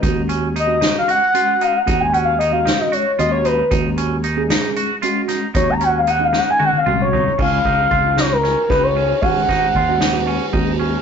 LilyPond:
<<
  \new Staff \with { instrumentName = "Analog synth lead" } { \time 7/8 \key aes \dorian \tempo 4 = 114 r4 ees''8. f''16 ges''4 f''16 ges''16~ | ges''16 aes''16 ges''16 f''16 ees''16 f''8 ees''16 des''8 ees''16 des''16 ces''8 | r2. r8 | des''16 bes''16 ges''16 f''16 ges''16 f''16 ges''16 aes''16 ges''16 f''8 des''8. |
f''4. des''16 bes'8. ces''16 des''8. | ges''2. r8 | }
  \new Staff \with { instrumentName = "Clean electric guitar" } { \time 7/8 \key aes \dorian ees'8 des'8 ees'8 ees'8 ges'8 f'8 ees'8 | ees'8 des'8 ees'8 ees'8 ges'8 f'8 ees'8 | ees'8 des'8 ees'8 ees'8 ges'8 f'8 ees'8 | ees'8 des'8 ees'8 ees'8 ges'8 f'8 ees'8 |
des'8 ees'8 f'8 ees'8 des'8 ees'8 des'8 | des'8 ees'8 f'8 ees'8 des'8 ees'8 des'8 | }
  \new Staff \with { instrumentName = "Tine electric piano" } { \time 7/8 \key aes \dorian <aes des' ges'>4 r16 <aes des' ges'>4 r16 <aes des' ges'>8. r16 | <aes des' ges'>4 r16 <aes des' ges'>4 r16 <aes des' ges'>8. r16 | <aes des' ges'>4 r16 <aes des' aes'>4 r16 <aes des' ges'>8. r16 | <aes des' ges'>4 r16 <aes des' ees'>4 r16 <aes des' ges'>8. r16 |
<aes des' f'>4 r16 <aes des' f'>4 r16 <aes des' f'>8. r16 | <aes des' ges'>4 r16 <aes des' ges'>4 r16 <aes des' ges'>8. r16 | }
  \new Staff \with { instrumentName = "Fretless electric bass" } { \clef bass \time 7/8 \key aes \dorian ees,2 r4. | ees,2 r8 ees,4 | ees,2 r4. | ees,2 r8 c,4 |
des,8 des,8 des,4. des,4 | aes,,8 aes,,8 ees,4. ees,4 | }
  \new DrumStaff \with { instrumentName = "Drums" } \drummode { \time 7/8 <hh bd>8 hh8 hh8 <hh sn>8 hh8 hh8 hh8 | <hh bd>8 hh8 hh8 <hh sn>8 hh8 hh8 hh8 | <hh bd>8 hh8 hh8 <hh sn>8 hh8 hh8 <hh sn>8 | <hh bd>8 hh8 hh8 sn8 tommh16 tommh16 toml8 tomfh16 tomfh16 |
<cymc bd>8 <bd cymr>8 <bd cymr>8 <cymr sn>8 <cymr sn>8 <bd cymr sn>8 cymr8 | <bd cymr>8 <bd cymr sn>8 <bd cymr>8 <cymr sn>8 cymr8 <bd cymr>8 cymr8 | }
>>